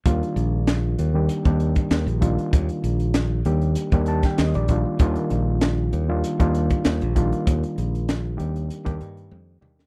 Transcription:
<<
  \new Staff \with { instrumentName = "Reed electric piano" } { \time 4/4 \key ees \major \tempo 4 = 97 r1 | r2 r8 a''16 g''16 ees''16 d''8. | r1 | r1 | }
  \new Staff \with { instrumentName = "Reed electric piano" } { \time 4/4 \key ees \major <ees g bes d' f'>4.~ <ees g bes d' f'>16 <ees g bes d' g'>8 <ees g bes d' g'>4~ <ees g bes d' g'>16 <ees g bes d' f'>8~ | <ees g bes d' f'>4. <ees g bes d' g'>8. <ees g bes d' g'>4~ <ees g bes d' g'>16 <ees g bes d' f'>8 | <ees g bes d' f'>4.~ <ees g bes d' f'>16 <ees g bes d' f'>8 <ees g bes d' f'>4~ <ees g bes d' f'>16 <ees g bes d' f'>8~ | <ees g bes d' f'>4. <ees g bes d' g'>8. <ees g bes d' g'>4~ <ees g bes d' g'>16 <ees g bes d' g'>8 | }
  \new Staff \with { instrumentName = "Fingered electric bass" } { \clef bass \time 4/4 \key ees \major ees,16 r16 bes,,4 ees,8 r16 ees,8 r16 ees,16 bes,,8 r16 | ees,16 r16 bes,,4 ees,8 r16 ees,8 r16 ees,16 bes,,8 r16 | ees,16 r16 bes,,4 ees,8 r16 ees,8 r16 ees,16 bes,,8 r16 | ees,16 r16 bes,,4 ees,8 r16 ees,16 g,8 f,8 ees,8 | }
  \new DrumStaff \with { instrumentName = "Drums" } \drummode { \time 4/4 <hh bd>16 hh16 hh8 <hh sn>8 hh8 hh16 <hh bd>16 hh16 <hh bd>16 <hh sn>16 hh16 <hh bd>16 hh16 | <hh bd>16 hh16 hh16 hh16 <hh sn>8 hh16 hh16 hh16 <hh bd>16 hh16 <hh bd sn>16 <hh sn>16 hh16 <hh bd>8 | <hh bd>16 hh16 hh8 <hh sn>8 hh8 hh16 <hh bd>16 hh16 <hh bd>16 <hh sn>16 hh16 <hh bd>16 hh16 | <hh bd>16 hh16 hh16 hh16 <hh sn>8 hh16 hh16 hh16 <hh bd>16 hh16 hh16 tommh8 toml16 sn16 | }
>>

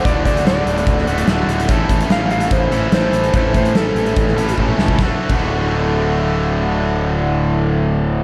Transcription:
<<
  \new Staff \with { instrumentName = "Electric slide guitar" } { \time 4/4 \key d \major \tempo 4 = 145 d''8 d''8 d''2 r4 | r4 f''8 f''8 c''4 c''4 | c''8 c''8 a'2 r4 | r1 |
r1 | }
  \new Staff \with { instrumentName = "Overdriven electric guitar" } { \time 4/4 \key d \major <d, a, d a fis'>2~ <d, a, d a fis'>8 <d, a, d a fis'>8 <d, a, d a fis'>4 | <a, e a cis' e' a'>2~ <a, e a cis' e' a'>8 <a, e a cis' e' a'>8 <a, e a cis' e' a'>4 | <a, e a cis' e' a'>2~ <a, e a cis' e' a'>8 <a, e a cis' e' a'>8 <a, e a cis' e' a'>4 | <d, a, d a fis'>16 r8 <d, a, d a fis'>2.~ <d, a, d a fis'>16~ |
<d, a, d a fis'>1 | }
  \new Staff \with { instrumentName = "Fingered electric bass" } { \clef bass \time 4/4 \key d \major d,,8 d,8 d,,8 d,,8 d,,8 d,,8 d,,8 d,,8 | a,,8 a,,8 a,,4 a,,8 a,,8 a,,8 a,,8 | a,,8 a,8 a,,8 a,,8 a,,8 a,,8 a,,8 cis,8 | d,,16 r8 d,,2.~ d,,16~ |
d,,1 | }
  \new DrumStaff \with { instrumentName = "Drums" } \drummode { \time 4/4 <hh bd>8 <hh bd>16 hh16 <hh sn>8 hh16 hh16 <hh bd>16 sn16 hh16 hh16 <hh sn>8 hh16 hh16 | <hh bd>8 <hh bd>16 hh16 <hh sn>8 hh16 hh16 <hh bd>8 hh8 <hh sn>8 hh16 hh16 | <hh bd>8 <hh bd>16 hh16 <hh sn>8 hh16 hh16 <hh bd>16 sn16 hh16 hh16 bd16 toml16 sn16 bd16 | <bd sn>8. <cymc bd>16 r4 r4 r4 |
r4 r4 r4 r4 | }
>>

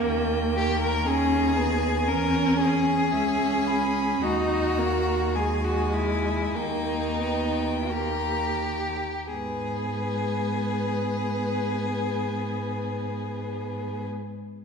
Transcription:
<<
  \new Staff \with { instrumentName = "Violin" } { \time 4/4 \key gis \minor \tempo 4 = 47 g''4 ais''8 gis''4. e''8 b''8 | ais''4 gis''4 g''8 g''8 ais''4 | b'1 | }
  \new Staff \with { instrumentName = "Violin" } { \time 4/4 \key gis \minor r8 g'16 ais'16 gis'4 ais'8 gis'4. | fis'4 gis'16 fis'16 e'8 dis'4 g'4 | gis'1 | }
  \new Staff \with { instrumentName = "Viola" } { \time 4/4 \key gis \minor ais4 cis'8 b8 cis'4 cis'4 | dis'8 ais8 gis4 ais8 b8 ais8 r8 | b1 | }
  \new Staff \with { instrumentName = "Cello" } { \clef bass \time 4/4 \key gis \minor dis,2 e,4 cis,4 | dis,2 dis,2 | gis,1 | }
>>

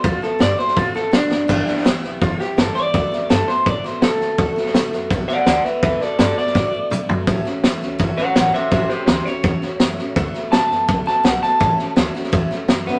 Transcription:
<<
  \new Staff \with { instrumentName = "Clean electric guitar" } { \time 4/4 \key d \major \tempo 4 = 166 f'8 a'8 d''8 c''8 f'8 a'8 d'4~ | d'4 r4 f'8 g'8 a'8 d''8~ | d''4 a'8 c''8 d''8 c''8 a'4~ | a'2 r8 <d'' fis''>8 <d'' fis''>8 <b' e''>8 |
<b' e''>8 <a' d''>8 <a' d''>8 d''2~ d''8 | r2 r8 <cis'' fis''>8 <cis'' fis''>8 <c'' e''>8 | <c'' e''>8 <g' c''>8 <g' c''>8 cis''2~ cis''8~ | cis''8 r8 a''4. a''8 fis''8 a''8~ |
a''4. r2 b8 | }
  \new Staff \with { instrumentName = "Steel-string acoustic guitar" } { \time 4/4 \key d \major <d a b fis'>8 <a b fis'>8 <d a b fis'>8 <a b fis'>8 <d a b fis'>8 <a b fis'>8 <d a b fis'>8 <a b fis'>8 | <g, d e g b e'>8 <e g b e'>8 <e g b e'>8 <e g b e'>8 <g, d e g b e'>8 <e g b e'>8 <e g b e'>8 <e g b e'>8 | <d a b fis'>8 <a b fis'>8 <d a b fis'>8 <a b fis'>8 <d a b fis'>8 <a b fis'>8 <d a b fis'>8 <a b fis'>8 | <d a b fis'>8 <a b fis'>8 <d a b fis'>8 <a b fis'>8 <d a b fis'>8 <a b fis'>8 <d a b fis'>8 <a b fis'>8 |
<d a b fis'>8 <a b fis'>8 <d a b fis'>8 <a b fis'>8 <d a b fis'>8 <a b fis'>8 <d a b fis'>8 <a b fis'>8 | <a, e a cis' fis'>8 <a cis' fis'>8 <e a cis' fis'>8 <a cis' fis'>8 <a, e a cis' fis'>8 <cis' fis'>8 <e a cis' fis'>8 <a cis' fis'>8 | <a, e a cis' fis'>8 <a cis' fis'>8 <e a cis' fis'>8 <a cis' fis'>8 <a, e a cis' fis'>8 <a cis' fis'>8 <e a cis' fis'>8 <a cis' fis'>8 | <d a b fis'>8 <a b fis'>8 <d a b fis'>8 <a b fis'>8 <d a b fis'>8 <a b fis'>8 <d a b fis'>8 <a b fis'>8 |
<a, e a cis' fis'>8 <a cis' fis'>8 <e a cis' fis'>8 <a cis' fis'>8 <a, e a cis' fis'>8 <a cis' fis'>8 <e a cis' fis'>8 <a cis' fis'>8 | }
  \new Staff \with { instrumentName = "Upright bass" } { \clef bass \time 4/4 \key d \major d,8 r8 g,8 r8 a,8 r8 b,8 fis,,8 | g,,8 r8 d,8 b,,8 e,,8 r8 g,,8 r8 | d,8 r8 g,8 r8 a,8 r8 b,8 d8 | d,8 r8 a,8 fis,8 b,,8 r8 d,8 r8 |
d,8 r8 g,8 r8 a,8 r8 b,8 d8 | a,,8 r8 e,8 cis,8 g,,8 r8 a,,8 r8 | a,,8 r8 d,8 r8 e,8 r8 fis,8 a,8 | d,8 r8 a,8 fis,8 b,,8 r8 b,,8 r8 |
a,,8 r8 d,8 r8 e,8 r8 fis,8 a,8 | }
  \new DrumStaff \with { instrumentName = "Drums" } \drummode { \time 4/4 <bd sn>8 sn8 <hhp sn>8 sn16 sn16 <bd sn>8 sn8 <hhp sn>8 sn8 | <cymc bd sn>8 sn16 sn16 <hhp sn>8 sn8 <bd sn>8 sn8 <hhp sn>8 sn8 | <bd sn>8 sn8 <hhp sn>8 sn8 <bd sn>8 sn8 <hhp sn>8 sn8 | <bd sn>8 sn16 sn16 <hhp sn>8 sn8 <bd sn>8 sn8 <hhp sn>8 sn8 |
<bd sn>8 sn8 <hhp sn>8 sn16 sn16 <bd sn>4 <hhp toml>8 tomfh8 | <bd sn>8 sn8 <hhp sn>8 sn8 <bd sn>8 sn8 <hhp sn>8 sn8 | <bd sn>8 sn8 <hhp sn>8 sn8 <bd sn>8 sn8 <hhp sn>8 sn8 | <bd sn>8 sn8 <hhp sn>8 sn8 <bd sn>8 sn8 <hhp sn>8 sn8 |
<bd sn>8 sn8 <hhp sn>8 sn16 sn16 <bd sn>8 sn8 <hhp sn>8 sn8 | }
>>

